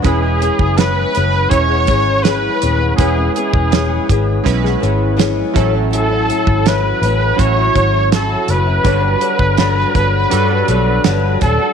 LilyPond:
<<
  \new Staff \with { instrumentName = "Trumpet" } { \time 4/4 \key e \major \tempo 4 = 82 gis'4 b'4 cis''4 b'4 | gis'8 gis'4. r2 | a'4 b'4 cis''4 a'8 b'8~ | b'2.~ b'8 a'8 | }
  \new Staff \with { instrumentName = "Synth keys" } { \time 4/4 \key e \major <gis cis' e' b'>4 r4 <gis cis' e' cis''>4 r4 | <gis cis' e' b'>4 r4 <gis cis' e' b'>4 r8 <fis cis' e' a'>8~ | <fis cis' e' a'>4 r4 <fis cis' e' fis'>4 r4 | <g d' fis' b'>4 r4 <g d' fis' a'>4 r4 | }
  \new Staff \with { instrumentName = "Nylon-string guitar" } { \time 4/4 \key e \major <e b cis' gis'>16 <b cis' gis'>16 <e b cis' gis'>8 <e b cis' gis'>8 <e b cis' gis'>8. <b cis' gis'>16 <e b cis' gis'>8 <e b cis' gis'>8 <e b cis' gis'>16 <b cis' gis'>16 | <e b cis' gis'>16 <b cis' gis'>16 <e b cis' gis'>8 <e b cis' gis'>8 <e b cis' gis'>8. <b cis' gis'>16 <e b cis' gis'>8 <e b cis' gis'>8 <a, fis cis' e'>16 <fis cis' e'>16 | <a, fis cis' e'>16 <fis cis' e'>16 <a, fis cis' e'>8 <fis cis' e'>8 <a, fis cis' e'>8. <fis cis' e'>16 <fis cis' e'>8 <fis cis' e'>8 <a, fis cis' e'>16 <fis cis' e'>16 | <g, d fis b d'>16 <fis b d'>16 <d fis b d'>8 <g, d fis b d'>8 <d fis b d'>8. <fis b d'>16 <d fis b d'>8 <g, d fis b d'>8 <d fis b d'>16 <fis b d'>16 | }
  \new Staff \with { instrumentName = "Fingered electric bass" } { \clef bass \time 4/4 \key e \major e,,8. fis,,8. fis,,8 e,,8 gis,,4 dis,,8 | e,,8 r16 e,,8. gis,,8 b,,8 gis,,4 a,,8~ | a,,8. gis,,8. a,,8 a,,8 gis,,4 fis,,8 | g,,8 r16 g,,8. g,,8 g,8 b,,8 g,,8 dis,,16 r16 | }
  \new DrumStaff \with { instrumentName = "Drums" } \drummode { \time 4/4 <hh bd>8 hh16 bd16 <hh sn>8 hh8 <hh bd>8 <hh bd>8 <hh sn>8 hh8 | <hh bd>8 hh16 bd16 <hh sn>8 <hh bd>8 <hh bd>16 sn16 hh8 <hh sn>8 <hh bd>8 | hh8 hh16 bd16 <hh sn>8 hh8 <hh bd>8 <hh bd>8 <hh sn>8 hh8 | <hh bd>8 hh16 bd16 <hh sn>8 <hh bd>8 hh8 hh8 <hh sn>8 <hh bd>8 | }
>>